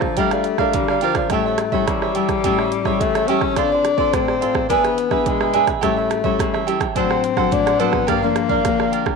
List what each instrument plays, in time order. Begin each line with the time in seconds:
Already playing: nylon-string guitar D3, tenor saxophone F3, cavaquinho A4 D5 F5 A#5
0.01 kick, cross-stick
0.17 nylon-string guitar G3 D4 F4, tenor saxophone A3, cavaquinho G4 A#4 D5 F5, kick, closed hi-hat
0.31 cavaquinho A#4 D5 F5, cross-stick, closed hi-hat
0.44 muted cavaquinho stroke, closed hi-hat
0.58 nylon-string guitar D4 F4 A#4, cavaquinho A#4 D5 F5, kick, cross-stick
0.73 nylon-string guitar D3, tenor saxophone G3, kick, closed hi-hat
0.88 cavaquinho A#4 D5 F5, cross-stick
1.01 tenor saxophone F3, nylon-string guitar D4 F4 A#4, cavaquinho G4 A#4 D5 F5, closed hi-hat
1.15 cavaquinho A#4 D5 F5, kick, cross-stick, closed hi-hat
1.30 nylon-string guitar A2 G3 C#4 E4, tenor saxophone A3, cavaquinho G4 A4 C#5, kick, cross-stick, closed hi-hat
1.34 cavaquinho E5
1.46 cavaquinho A4 C#5 E5
1.58 muted cavaquinho stroke, cross-stick, closed hi-hat
1.72 nylon-string guitar G3 C#4 E4, cavaquinho A4 C#5 E5, kick
1.87 nylon-string guitar E3, tenor saxophone G3, kick, cross-stick, closed hi-hat
2.02 cavaquinho A4 C#5 E5, cross-stick
2.15 nylon-string guitar G3 C#4 E4, cavaquinho G4 A4 C#5 E5, closed hi-hat
2.29 kick, cross-stick, closed hi-hat
2.44 nylon-string guitar A2 G3 C#4 E4, cavaquinho G4 A4 C#5 E5, kick, closed hi-hat
2.59 cavaquinho A4 C#5 E5, cross-stick
2.72 muted cavaquinho stroke, closed hi-hat
2.85 nylon-string guitar G3 C#4 E4, cavaquinho A4 C#5 E5, kick, cross-stick
3.01 nylon-string guitar E3, tenor saxophone A3, kick, closed hi-hat
3.15 cavaquinho A4 C#5 E5, cross-stick, closed hi-hat
3.27 nylon-string guitar G3 C#4 E4, tenor saxophone C#4, cavaquinho G4 A4 C#5 E5, closed hi-hat
3.41 cavaquinho A4 C#5 E5, kick, cross-stick
3.56 nylon-string guitar D3 C4 F4 A4, tenor saxophone D4, cavaquinho F4 A4 C5 D5, kick, cross-stick, closed hi-hat
3.72 cavaquinho A4 C5 D5
3.85 muted cavaquinho stroke, cross-stick, closed hi-hat
3.97 nylon-string guitar C4 F4 A4, cavaquinho A4 C5 D5, kick
4.13 nylon-string guitar A2, tenor saxophone C4, kick, cross-stick, closed hi-hat
4.28 cavaquinho A4 C5 D5, cross-stick
4.41 nylon-string guitar C4 F4 A4, cavaquinho F4 A4 C5 D5, closed hi-hat
4.55 kick, cross-stick
4.69 nylon-string guitar E3 B3 D4 G#4, tenor saxophone B3, cavaquinho D4 G#4 B4 E5, kick, closed hi-hat
4.84 cavaquinho G#4 B4 E5, cross-stick, closed hi-hat
4.98 muted cavaquinho stroke, closed hi-hat
5.11 nylon-string guitar B3 D4 G#4, cavaquinho G#4 B4 E5, kick, cross-stick
5.26 nylon-string guitar B2, tenor saxophone G#3, kick, closed hi-hat
5.41 cavaquinho G#4 B4 E5, cross-stick
5.53 nylon-string guitar B3 D4 G#4, cavaquinho D4 G#4 B4 E5, closed hi-hat
5.67 cavaquinho G#4 B4 E5, kick, cross-stick, closed hi-hat
5.81 nylon-string guitar A2 G3 C#4 E4, tenor saxophone A3, cavaquinho G4 A4 C#5 E5, kick, cross-stick, closed hi-hat
5.97 cavaquinho A4 C#5 E5
6.09 muted cavaquinho stroke, cross-stick, closed hi-hat
6.24 nylon-string guitar G3 C#4 E4, cavaquinho A4 C#5 E5, kick
6.39 nylon-string guitar E3, kick, cross-stick, closed hi-hat
6.54 cavaquinho A4 C#5 E5, cross-stick
6.67 nylon-string guitar G3 C#4 E4, cavaquinho G4 A4 C#5 E5, closed hi-hat
6.80 kick, cross-stick, closed hi-hat
6.96 nylon-string guitar A2 F#3 C4 D4, tenor saxophone C4, cavaquinho D4 A4 C5 F#5, kick, closed hi-hat
7.10 cavaquinho A4 C5 F#5, cross-stick
7.23 muted cavaquinho stroke, closed hi-hat
7.37 nylon-string guitar F#3 C4 D4, cavaquinho A4 C5 F#5, kick, cross-stick
7.51 nylon-string guitar A2, tenor saxophone D4, kick, closed hi-hat
7.66 cavaquinho A4 C5 F#5, cross-stick, closed hi-hat
7.79 nylon-string guitar F#3 C4 D4, tenor saxophone B3, cavaquinho D4 A4 C5 F#5, closed hi-hat
7.92 cavaquinho A4 C5 F#5, kick, cross-stick
8.07 nylon-string guitar G2 F3 A#3 D4, tenor saxophone A#3, cavaquinho G4 A#4 D5 F5, kick, cross-stick, closed hi-hat
8.23 nylon-string guitar F3 A#3 D4, cavaquinho A#4 D5 F5
8.35 muted cavaquinho stroke, cross-stick, closed hi-hat
8.49 cavaquinho A#4 D5 F5, kick
8.65 nylon-string guitar D3 F3 A#3 D4, kick, cross-stick, closed hi-hat
8.79 cavaquinho A#4 D5 F5, cross-stick
8.92 cavaquinho G4 A#4 D5 F5, closed hi-hat
9.06 kick, cross-stick